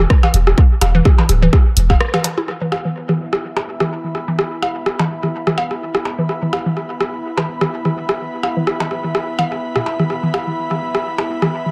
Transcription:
0.10 kick loud
0.10 cross-stick loud
0.23 0.26 E3 medium
0.23 cross-stick soft
0.23 percussion blips medium
0.34 0.53 E1 loud
0.34 closed hi-hat medium
0.47 cross-stick medium
0.58 kick loud
0.81 1.01 E1 loud
0.81 cross-stick soft
0.81 closed hi-hat medium
0.81 percussion blips medium
0.95 1.00 E3 loud
1.05 kick loud
1.05 cross-stick medium
1.18 1.22 E3 medium
1.18 percussion blips medium
1.29 1.49 D1 medium
1.29 cross-stick soft
1.29 closed hi-hat medium
1.42 1.46 E3 loud
1.53 kick loud
1.53 cross-stick medium
1.77 1.96 E1 loud
1.77 closed hi-hat medium
1.90 kick medium
1.90 cross-stick soft
1.90 percussion blips medium
2.01 cross-stick loud
2.14 2.19 E3 loud
2.14 cross-stick medium
2.14 percussion blips medium
2.24 2.28 E3 medium
2.24 closed hi-hat medium
2.24 percussion blips medium
2.38 2.42 E4 medium
2.38 cross-stick soft
2.48 11.71 B3 medium
2.48 cross-stick soft
2.61 2.66 E3 loud
2.72 2.91 E1 medium
2.72 cross-stick medium
2.72 percussion blips medium
2.85 2.88 E3 medium
2.85 11.71 E4 medium
3.07 3.12 E3 loud
3.07 11.71 E5 medium
3.07 cross-stick soft
3.20 3.39 D1 medium
3.33 cross-stick medium
3.57 11.71 B5 medium
3.57 cross-stick soft
3.57 percussion blips medium
3.67 3.87 E1 medium
3.80 3.85 E3 loud
3.80 cross-stick medium
4.04 4.07 E3 medium
4.15 4.34 E1 medium
4.15 cross-stick soft
4.28 4.31 E3 loud
4.39 cross-stick medium
4.62 4.82 E1 medium
4.62 cross-stick soft
4.62 percussion blips medium
4.86 cross-stick medium
4.99 5.04 E3 loud
4.99 percussion blips medium
5.10 5.30 D1 medium
5.23 5.26 E3 medium
5.23 cross-stick soft
5.47 5.50 E3 loud
5.47 cross-stick medium
5.58 5.77 E1 medium
5.58 percussion blips medium
5.71 cross-stick soft
5.95 cross-stick medium
6.05 6.25 E1 medium
6.05 percussion blips medium
6.18 6.23 E3 loud
6.29 cross-stick soft
6.42 6.46 E3 medium
6.53 6.72 E1 loud
6.53 cross-stick medium
6.53 percussion blips medium
6.66 6.69 E3 loud
6.77 cross-stick soft
7.00 7.20 D1 medium
7.00 cross-stick medium
7.37 7.42 E3 medium
7.37 cross-stick soft
7.37 percussion blips medium
7.48 7.68 E1 medium
7.61 7.65 E3 medium
7.61 cross-stick medium
7.85 7.88 E3 medium
7.85 cross-stick soft
7.96 8.15 E1 medium
8.09 cross-stick medium
8.43 8.63 E1 medium
8.43 cross-stick soft
8.43 percussion blips medium
8.57 8.61 E3 loud
8.67 cross-stick medium
8.80 8.84 E3 medium
8.80 percussion blips medium
8.91 9.10 D1 medium
8.91 cross-stick soft
9.04 9.07 E3 loud
9.15 cross-stick medium
9.39 9.58 E1 loud
9.39 9.43 E3 medium
9.39 percussion blips medium
9.52 cross-stick soft
9.76 9.78 B2 medium
9.76 cross-stick medium
9.86 10.06 E1 medium
9.86 percussion blips medium
9.99 10.03 E3 loud
9.99 cross-stick soft
10.10 cross-stick soft
10.23 10.28 E3 loud
10.34 10.53 E1 medium
10.34 cross-stick medium
10.34 percussion blips medium
10.47 10.50 E3 medium
10.71 10.74 E3 loud
10.71 cross-stick soft
10.81 11.01 D1 medium
10.95 cross-stick medium
11.18 cross-stick soft
11.18 percussion blips medium
11.29 11.49 E1 medium
11.42 11.47 E3 loud
11.42 cross-stick medium
11.66 11.69 E3 medium

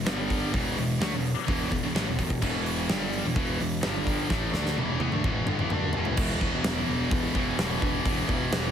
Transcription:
0.06 0.51 G1 medium
0.06 0.53 G2 medium
0.06 0.53 D3 medium
0.06 0.53 G3 loud
0.06 snare loud
0.30 kick medium
0.30 open hi-hat medium
0.54 0.76 E1 medium
0.54 0.77 E2 medium
0.54 0.77 B2 medium
0.54 0.77 E3 medium
0.54 kick loud
0.54 open hi-hat medium
0.77 1.00 E1 medium
0.77 0.97 E2 medium
0.77 0.97 B2 medium
0.77 open hi-hat medium
1.01 1.12 D2 loud
1.01 1.12 D3 medium
1.01 1.13 A3 loud
1.01 snare loud
1.13 1.35 E1 medium
1.13 1.32 E2 medium
1.13 1.32 B2 medium
1.25 open hi-hat medium
1.47 1.70 E1 loud
1.47 1.69 E2 medium
1.47 1.70 B2 loud
1.47 1.71 E3 loud
1.47 kick loud
1.47 open hi-hat medium
1.71 1.83 E1 medium
1.71 1.82 E2 medium
1.71 1.82 B2 medium
1.71 kick medium
1.71 open hi-hat medium
1.83 1.95 E1 medium
1.83 1.95 E2 medium
1.83 1.95 B2 medium
1.95 2.06 A1 medium
1.95 2.06 A2 medium
1.95 2.06 E3 medium
1.95 snare loud
1.95 open hi-hat medium
2.07 2.18 E1 medium
2.07 2.18 E2 medium
2.07 2.19 B2 medium
2.18 2.41 E1 medium
2.18 2.38 E2 medium
2.18 2.38 B2 medium
2.18 kick medium
2.18 open hi-hat medium
2.30 kick medium
2.42 2.86 E1 loud
2.42 2.88 E2 medium
2.42 2.89 B2 medium
2.42 2.89 E3 medium
2.42 kick medium
2.42 crash loud
2.66 open hi-hat medium
2.89 3.22 G1 medium
2.89 3.24 G2 medium
2.89 3.24 D3 loud
2.89 3.24 G3 loud
2.89 snare loud
2.89 open hi-hat medium
3.12 open hi-hat medium
3.25 3.35 E1 medium
3.25 3.35 E2 medium
3.25 3.35 B2 medium
3.36 3.58 E1 medium
3.36 3.59 E2 loud
3.36 3.59 B2 loud
3.36 3.59 E3 loud
3.36 kick loud
3.36 open hi-hat medium
3.60 3.82 E1 medium
3.60 3.79 E2 medium
3.60 3.79 B2 medium
3.60 open hi-hat medium
3.83 4.28 G1 loud
3.83 4.30 G2 medium
3.83 4.29 D3 loud
3.83 4.29 G3 loud
3.83 snare loud
4.07 kick medium
4.07 open hi-hat medium
4.30 4.53 A1 medium
4.30 4.53 A2 medium
4.30 4.53 E3 loud
4.30 4.52 A3 loud
4.30 kick loud
4.30 snare medium
4.53 4.75 D2 loud
4.53 4.76 D3 loud
4.53 4.77 A3 medium
4.53 4.77 D4 loud
4.53 snare medium
4.66 snare medium
4.77 4.99 E1 medium
4.77 5.00 E2 medium
4.77 5.00 B2 loud
4.77 4.99 E3 loud
4.77 high tom medium
5.00 5.11 E2 medium
5.00 5.12 E3 loud
5.00 5.12 B3 loud
5.00 high tom medium
5.12 5.23 D2 medium
5.12 5.23 D3 medium
5.12 5.24 A3 medium
5.12 mid tom medium
5.24 5.46 E1 loud
5.24 5.47 E2 loud
5.24 5.47 B2 medium
5.24 5.47 E3 medium
5.24 kick loud
5.24 mid tom medium
5.47 5.58 G1 loud
5.47 5.59 G2 medium
5.47 5.59 D3 loud
5.47 mid tom medium
5.59 5.71 A1 medium
5.59 5.70 A2 medium
5.59 5.71 E3 medium
5.59 mid tom medium
5.70 5.93 D2 loud
5.70 5.94 D3 medium
5.70 5.94 A3 loud
5.70 5.94 D4 loud
5.70 mid tom loud
5.93 6.16 E1 medium
5.93 6.17 E2 medium
5.93 6.18 B2 loud
5.93 6.18 E3 medium
5.93 floor tom loud
6.05 floor tom medium
6.17 6.35 E1 loud
6.17 7.34 E2 medium
6.17 7.35 B2 loud
6.17 7.34 E3 medium
6.17 kick loud
6.17 crash loud
6.41 6.59 E1 medium
6.41 kick medium
6.64 6.82 E1 loud
6.64 snare loud
6.64 open hi-hat medium
6.88 7.06 E1 medium
7.11 7.29 E1 loud
7.11 kick loud
7.11 open hi-hat medium
7.35 7.53 E1 loud
7.35 7.57 E2 medium
7.35 7.58 B2 medium
7.35 7.58 E3 medium
7.35 kick medium
7.58 7.76 E1 loud
7.58 8.04 E2 medium
7.58 8.05 B2 medium
7.58 8.05 E3 medium
7.58 snare loud
7.58 open hi-hat medium
7.82 8.00 E1 medium
7.82 kick medium
8.05 8.23 E1 loud
8.05 8.71 E2 medium
8.05 8.71 B2 medium
8.05 8.71 E3 loud
8.05 kick loud
8.05 open hi-hat medium
8.29 8.46 E1 loud
8.29 kick medium
8.52 8.70 E1 medium
8.52 snare loud
8.52 open hi-hat medium

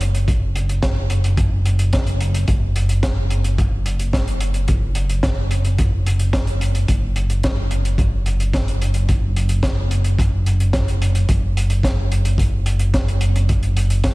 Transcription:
0.00 2.45 F#1 medium
0.00 closed hi-hat medium
0.15 closed hi-hat medium
0.28 kick loud
0.28 closed hi-hat medium
0.56 closed hi-hat medium
0.69 closed hi-hat medium
0.82 kick loud
0.82 snare loud
0.82 closed hi-hat medium
1.10 closed hi-hat medium
1.24 closed hi-hat medium
1.37 kick loud
1.37 closed hi-hat medium
1.65 closed hi-hat medium
1.79 closed hi-hat medium
1.93 kick loud
1.93 snare loud
1.93 closed hi-hat medium
2.07 closed hi-hat medium
2.21 closed hi-hat medium
2.34 closed hi-hat medium
2.48 6.86 F#1 medium
2.48 kick loud
2.48 closed hi-hat medium
2.76 closed hi-hat medium
2.89 closed hi-hat medium
3.03 kick loud
3.03 snare loud
3.03 closed hi-hat medium
3.30 closed hi-hat medium
3.44 closed hi-hat medium
3.58 kick loud
3.58 closed hi-hat medium
3.86 closed hi-hat medium
3.99 closed hi-hat medium
4.13 kick loud
4.13 snare loud
4.13 closed hi-hat medium
4.28 closed hi-hat medium
4.40 closed hi-hat medium
4.54 closed hi-hat medium
4.68 kick loud
4.68 closed hi-hat medium
4.95 closed hi-hat medium
5.09 closed hi-hat medium
5.23 kick loud
5.23 snare loud
5.23 closed hi-hat medium
5.51 closed hi-hat medium
5.65 closed hi-hat medium
5.78 kick loud
5.78 closed hi-hat medium
6.07 closed hi-hat medium
6.19 closed hi-hat medium
6.33 kick loud
6.33 snare loud
6.33 closed hi-hat medium
6.47 closed hi-hat soft
6.61 closed hi-hat medium
6.75 closed hi-hat medium
6.88 11.26 F#1 medium
6.88 kick loud
6.88 closed hi-hat medium
7.16 closed hi-hat medium
7.30 closed hi-hat medium
7.43 kick loud
7.43 snare loud
7.43 closed hi-hat medium
7.71 closed hi-hat medium
7.85 closed hi-hat medium
7.98 kick loud
7.98 closed hi-hat medium
8.26 closed hi-hat medium
8.40 closed hi-hat medium
8.53 kick loud
8.53 snare loud
8.53 closed hi-hat medium
8.68 closed hi-hat medium
8.82 closed hi-hat medium
8.94 closed hi-hat medium
9.09 kick loud
9.09 closed hi-hat medium
9.36 closed hi-hat medium
9.49 closed hi-hat medium
9.63 kick loud
9.63 snare loud
9.63 closed hi-hat medium
9.91 closed hi-hat medium
10.04 closed hi-hat medium
10.19 kick loud
10.19 closed hi-hat medium
10.46 closed hi-hat medium
10.60 closed hi-hat medium
10.73 kick loud
10.73 snare loud
10.73 closed hi-hat medium
10.88 closed hi-hat medium
11.02 closed hi-hat medium
11.15 closed hi-hat medium
11.29 14.14 F#1 medium
11.29 kick loud
11.29 closed hi-hat medium
11.57 closed hi-hat medium
11.70 closed hi-hat medium
11.83 kick loud
11.83 snare loud
11.83 closed hi-hat medium
12.12 closed hi-hat medium
12.25 closed hi-hat medium
12.38 kick loud
12.38 closed hi-hat medium
12.66 closed hi-hat medium
12.79 closed hi-hat medium
12.94 kick loud
12.94 snare loud
12.94 closed hi-hat medium
13.08 closed hi-hat soft
13.21 closed hi-hat medium
13.36 closed hi-hat medium
13.49 kick loud
13.49 closed hi-hat medium
13.63 closed hi-hat soft
13.77 closed hi-hat medium
13.90 closed hi-hat medium
14.04 kick loud
14.04 snare loud
14.04 closed hi-hat medium

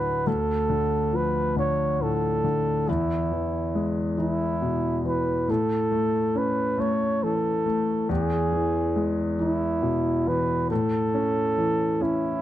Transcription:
0.00 0.22 D2 medium
0.00 0.24 A2 soft
0.00 0.29 D3 soft
0.00 0.23 F#3 soft
0.00 0.29 B4 medium
0.27 2.84 D2 soft
0.27 1.17 A4 medium
0.69 1.55 D3 soft
1.12 2.83 F3 soft
1.12 1.58 B4 medium
1.57 2.43 D3 soft
1.57 2.04 C#5 medium
2.00 2.85 A2 soft
2.00 2.91 A4 medium
2.44 2.87 D3 soft
2.89 5.45 E2 soft
2.89 3.92 E4 medium
3.32 4.16 E3 soft
3.75 5.45 G#3 soft
4.18 5.03 E3 soft
4.18 5.01 E4 medium
4.62 5.46 B2 soft
5.05 5.47 E3 soft
5.05 5.52 B4 medium
5.48 8.05 A2 medium
5.48 6.39 A4 medium
5.91 6.76 A3 soft
6.35 8.06 C#4 soft
6.35 6.82 B4 medium
6.78 7.64 A3 soft
6.78 7.25 C#5 medium
7.23 8.07 E3 soft
7.23 8.10 A4 medium
7.66 8.08 A3 soft
8.09 10.66 E2 medium
8.09 9.10 G#4 medium
8.52 9.38 E3 soft
8.96 10.66 G#3 soft
9.39 10.25 E3 soft
9.39 10.30 E4 medium
9.82 10.67 B2 soft
10.27 10.69 E3 soft
10.27 10.70 B4 medium
10.71 12.42 A2 medium
10.71 12.04 A4 medium
11.14 11.99 C#4 soft
11.57 12.42 E3 soft
12.01 12.42 C#4 soft
12.01 12.42 E4 medium

